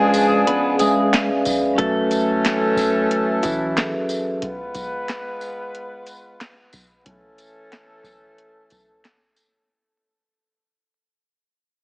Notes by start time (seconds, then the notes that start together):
Already playing: F3 G#3 C#4 D4 G#4 B4 D5 F5
0.14 tambourine, shaker
0.47 B3 B4, closed hi-hat
0.76 C#4 G#4 B4 D5, closed hi-hat, tambourine, shaker
0.81 G#3 E5
0.87 F5
1.14 snare, clap, closed hi-hat
1.45 kick, tambourine, shaker
1.74 F#3 C#4 F#4
1.78 E3 A3 C#4 A4 B4 E5, kick, closed hi-hat
2.11 closed hi-hat, tambourine, shaker
2.45 snare, clap, closed hi-hat
2.76 kick, snare, tambourine, shaker
3.11 closed hi-hat
3.43 E3 E4, kick, closed hi-hat, tambourine, shaker
3.75 F#3 C#4 G#4 A4 B4, snare, clap, closed hi-hat
4.09 tambourine, shaker
4.42 G#3 B3 F4 B4, kick, closed hi-hat
4.75 kick, closed hi-hat, tambourine, shaker
5.08 snare, clap, closed hi-hat
5.41 tambourine, shaker
5.75 closed hi-hat
6.07 closed hi-hat, tambourine, shaker
6.41 snare, clap, closed hi-hat
6.73 kick, tambourine, shaker
7.06 E3 A3 C#4 A4, kick, closed hi-hat
7.38 closed hi-hat, tambourine, shaker
7.72 snare, clap, closed hi-hat
8.04 kick, snare, tambourine, shaker
8.38 closed hi-hat
8.70 kick, closed hi-hat, tambourine, shaker
9.05 snare, clap, closed hi-hat
9.36 tambourine, shaker